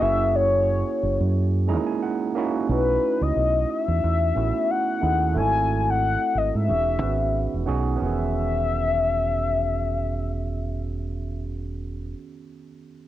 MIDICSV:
0, 0, Header, 1, 4, 480
1, 0, Start_track
1, 0, Time_signature, 4, 2, 24, 8
1, 0, Key_signature, 4, "major"
1, 0, Tempo, 666667
1, 9417, End_track
2, 0, Start_track
2, 0, Title_t, "Soft synth lead"
2, 0, Program_c, 0, 80
2, 16, Note_on_c, 0, 76, 98
2, 256, Note_on_c, 0, 73, 89
2, 266, Note_off_c, 0, 76, 0
2, 967, Note_off_c, 0, 73, 0
2, 1945, Note_on_c, 0, 71, 82
2, 2319, Note_on_c, 0, 75, 85
2, 2330, Note_off_c, 0, 71, 0
2, 2665, Note_on_c, 0, 76, 93
2, 2675, Note_off_c, 0, 75, 0
2, 3389, Note_on_c, 0, 78, 92
2, 3400, Note_off_c, 0, 76, 0
2, 3854, Note_off_c, 0, 78, 0
2, 3869, Note_on_c, 0, 80, 96
2, 4178, Note_off_c, 0, 80, 0
2, 4178, Note_on_c, 0, 80, 76
2, 4248, Note_on_c, 0, 78, 105
2, 4259, Note_off_c, 0, 80, 0
2, 4592, Note_on_c, 0, 75, 85
2, 4603, Note_off_c, 0, 78, 0
2, 4708, Note_off_c, 0, 75, 0
2, 4724, Note_on_c, 0, 76, 82
2, 5506, Note_off_c, 0, 76, 0
2, 5784, Note_on_c, 0, 76, 84
2, 8238, Note_off_c, 0, 76, 0
2, 9417, End_track
3, 0, Start_track
3, 0, Title_t, "Tine electric piano"
3, 0, Program_c, 1, 4
3, 0, Control_c, 1, 64, 127
3, 0, Note_on_c, 1, 58, 67
3, 0, Note_on_c, 1, 61, 59
3, 5, Note_on_c, 1, 66, 63
3, 8, Control_c, 1, 64, 0
3, 12, Note_on_c, 1, 64, 59
3, 12, Note_on_c, 1, 68, 77
3, 116, Control_c, 1, 64, 127
3, 869, Note_off_c, 1, 58, 0
3, 871, Note_off_c, 1, 61, 0
3, 874, Note_off_c, 1, 66, 0
3, 877, Note_off_c, 1, 64, 0
3, 877, Note_off_c, 1, 68, 0
3, 1204, Note_on_c, 1, 56, 58
3, 1210, Note_on_c, 1, 61, 60
3, 1214, Note_on_c, 1, 63, 59
3, 1215, Note_on_c, 1, 82, 60
3, 1221, Note_on_c, 1, 64, 62
3, 1224, Note_on_c, 1, 68, 67
3, 1250, Note_on_c, 1, 58, 66
3, 1253, Note_off_c, 1, 56, 0
3, 1331, Note_off_c, 1, 82, 0
3, 1343, Note_on_c, 1, 80, 58
3, 1437, Note_off_c, 1, 80, 0
3, 1459, Note_on_c, 1, 78, 61
3, 1640, Note_off_c, 1, 61, 0
3, 1642, Note_off_c, 1, 63, 0
3, 1645, Note_off_c, 1, 64, 0
3, 1647, Note_off_c, 1, 68, 0
3, 1660, Note_off_c, 1, 58, 0
3, 1673, Note_off_c, 1, 78, 0
3, 1693, Note_on_c, 1, 58, 75
3, 1699, Note_on_c, 1, 61, 67
3, 1703, Note_on_c, 1, 76, 59
3, 1705, Note_on_c, 1, 63, 66
3, 1706, Note_on_c, 1, 64, 69
3, 1714, Note_on_c, 1, 66, 83
3, 1904, Note_off_c, 1, 58, 0
3, 1907, Note_off_c, 1, 61, 0
3, 1910, Note_off_c, 1, 63, 0
3, 1910, Note_off_c, 1, 64, 0
3, 1914, Note_off_c, 1, 66, 0
3, 1914, Note_off_c, 1, 76, 0
3, 1929, Control_c, 1, 64, 0
3, 1934, Note_on_c, 1, 57, 61
3, 1937, Note_on_c, 1, 61, 54
3, 1942, Note_on_c, 1, 63, 61
3, 1948, Note_on_c, 1, 64, 56
3, 1954, Note_on_c, 1, 66, 69
3, 2059, Control_c, 1, 64, 127
3, 2798, Note_off_c, 1, 57, 0
3, 2800, Note_off_c, 1, 61, 0
3, 2802, Note_off_c, 1, 63, 0
3, 2805, Note_off_c, 1, 64, 0
3, 2808, Note_off_c, 1, 66, 0
3, 3133, Note_on_c, 1, 57, 57
3, 3133, Note_on_c, 1, 61, 49
3, 3137, Note_on_c, 1, 59, 49
3, 3146, Note_on_c, 1, 64, 54
3, 3150, Note_on_c, 1, 66, 61
3, 3561, Note_off_c, 1, 57, 0
3, 3562, Note_off_c, 1, 61, 0
3, 3564, Note_off_c, 1, 59, 0
3, 3568, Note_off_c, 1, 64, 0
3, 3570, Note_off_c, 1, 66, 0
3, 3607, Note_on_c, 1, 57, 56
3, 3613, Note_on_c, 1, 63, 51
3, 3614, Note_on_c, 1, 61, 58
3, 3620, Note_on_c, 1, 64, 55
3, 3626, Note_on_c, 1, 68, 62
3, 3821, Note_off_c, 1, 57, 0
3, 3824, Note_off_c, 1, 61, 0
3, 3824, Note_off_c, 1, 63, 0
3, 3827, Note_off_c, 1, 64, 0
3, 3830, Note_off_c, 1, 68, 0
3, 3843, Note_on_c, 1, 57, 64
3, 3846, Control_c, 1, 64, 0
3, 3853, Note_on_c, 1, 60, 54
3, 3856, Note_on_c, 1, 64, 60
3, 3861, Note_on_c, 1, 66, 55
3, 3863, Note_on_c, 1, 69, 67
3, 3965, Control_c, 1, 64, 127
3, 4713, Note_off_c, 1, 57, 0
3, 4718, Note_off_c, 1, 60, 0
3, 4719, Note_off_c, 1, 64, 0
3, 4722, Note_off_c, 1, 66, 0
3, 4723, Note_off_c, 1, 69, 0
3, 4802, Note_on_c, 1, 59, 56
3, 4806, Control_c, 1, 64, 0
3, 4810, Note_on_c, 1, 61, 56
3, 4815, Note_on_c, 1, 63, 48
3, 4819, Note_on_c, 1, 66, 57
3, 4822, Note_on_c, 1, 68, 64
3, 4945, Control_c, 1, 64, 127
3, 5018, Note_off_c, 1, 59, 0
3, 5022, Note_off_c, 1, 61, 0
3, 5025, Note_off_c, 1, 63, 0
3, 5027, Note_off_c, 1, 66, 0
3, 5028, Note_off_c, 1, 68, 0
3, 5036, Note_on_c, 1, 59, 52
3, 5042, Note_on_c, 1, 61, 49
3, 5048, Note_on_c, 1, 51, 45
3, 5052, Note_on_c, 1, 66, 51
3, 5057, Note_on_c, 1, 71, 61
3, 5473, Note_off_c, 1, 59, 0
3, 5476, Note_off_c, 1, 61, 0
3, 5479, Note_off_c, 1, 51, 0
3, 5481, Note_off_c, 1, 66, 0
3, 5484, Note_off_c, 1, 71, 0
3, 5514, Note_on_c, 1, 59, 68
3, 5521, Note_on_c, 1, 61, 65
3, 5526, Note_on_c, 1, 63, 62
3, 5527, Note_on_c, 1, 66, 67
3, 5533, Note_on_c, 1, 68, 75
3, 5719, Note_off_c, 1, 59, 0
3, 5728, Note_on_c, 1, 59, 64
3, 5736, Note_off_c, 1, 61, 0
3, 5740, Note_off_c, 1, 63, 0
3, 5741, Note_off_c, 1, 66, 0
3, 5744, Note_off_c, 1, 68, 0
3, 5745, Note_on_c, 1, 61, 62
3, 5763, Note_on_c, 1, 51, 55
3, 5767, Control_c, 1, 64, 0
3, 5785, Note_on_c, 1, 66, 58
3, 5803, Note_on_c, 1, 68, 66
3, 5902, Control_c, 1, 64, 127
3, 8714, Note_off_c, 1, 59, 0
3, 8723, Note_off_c, 1, 61, 0
3, 8732, Note_off_c, 1, 51, 0
3, 8743, Note_off_c, 1, 66, 0
3, 8752, Note_off_c, 1, 68, 0
3, 9417, End_track
4, 0, Start_track
4, 0, Title_t, "Fingered electric bass"
4, 0, Program_c, 2, 33
4, 15, Note_on_c, 2, 30, 88
4, 590, Note_off_c, 2, 30, 0
4, 741, Note_on_c, 2, 30, 68
4, 846, Note_off_c, 2, 30, 0
4, 866, Note_on_c, 2, 42, 76
4, 1275, Note_off_c, 2, 42, 0
4, 1937, Note_on_c, 2, 35, 84
4, 2137, Note_off_c, 2, 35, 0
4, 2312, Note_on_c, 2, 37, 76
4, 2396, Note_off_c, 2, 37, 0
4, 2420, Note_on_c, 2, 35, 78
4, 2618, Note_off_c, 2, 35, 0
4, 2793, Note_on_c, 2, 40, 78
4, 2876, Note_off_c, 2, 40, 0
4, 2907, Note_on_c, 2, 40, 85
4, 3102, Note_off_c, 2, 40, 0
4, 3139, Note_on_c, 2, 33, 80
4, 3245, Note_off_c, 2, 33, 0
4, 3619, Note_on_c, 2, 39, 74
4, 3856, Note_on_c, 2, 32, 86
4, 3867, Note_off_c, 2, 39, 0
4, 4431, Note_off_c, 2, 32, 0
4, 4572, Note_on_c, 2, 32, 60
4, 4681, Note_off_c, 2, 32, 0
4, 4714, Note_on_c, 2, 44, 76
4, 4820, Note_on_c, 2, 28, 86
4, 4830, Note_off_c, 2, 44, 0
4, 5018, Note_off_c, 2, 28, 0
4, 5055, Note_on_c, 2, 32, 68
4, 5370, Note_off_c, 2, 32, 0
4, 5427, Note_on_c, 2, 28, 72
4, 5513, Note_off_c, 2, 28, 0
4, 5528, Note_on_c, 2, 35, 69
4, 5732, Note_off_c, 2, 35, 0
4, 5771, Note_on_c, 2, 28, 74
4, 8736, Note_off_c, 2, 28, 0
4, 9417, End_track
0, 0, End_of_file